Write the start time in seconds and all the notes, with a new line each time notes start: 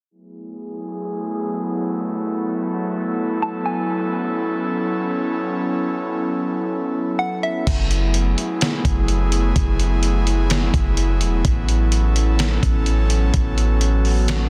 0.11 F#3 A3 B3 E4 G#4
2.00 A4
3.42 A5
3.66 G#5
3.89 C#4
7.19 F#5
7.43 E5
7.67 F#1 F#3 A3 B3 E4 G#4, kick, closed hi-hat, crash
7.91 closed hi-hat
8.14 closed hi-hat
8.38 closed hi-hat
8.61 snare, closed hi-hat
8.85 F#1, kick, closed hi-hat
9.08 closed hi-hat
9.32 closed hi-hat
9.56 F#1, kick, closed hi-hat
9.80 closed hi-hat
10.03 closed hi-hat
10.27 closed hi-hat
10.50 snare, closed hi-hat
10.74 F#1, kick, closed hi-hat
10.97 closed hi-hat
11.21 E1, closed hi-hat
11.45 A1 C#4 A4, kick, closed hi-hat
11.69 closed hi-hat
11.92 closed hi-hat
12.16 closed hi-hat
12.39 snare, closed hi-hat
12.63 A1, kick, closed hi-hat
12.86 closed hi-hat
13.10 closed hi-hat
13.34 A1 F#4, kick, closed hi-hat
13.58 closed hi-hat
13.81 closed hi-hat
14.05 open hi-hat
14.28 snare, closed hi-hat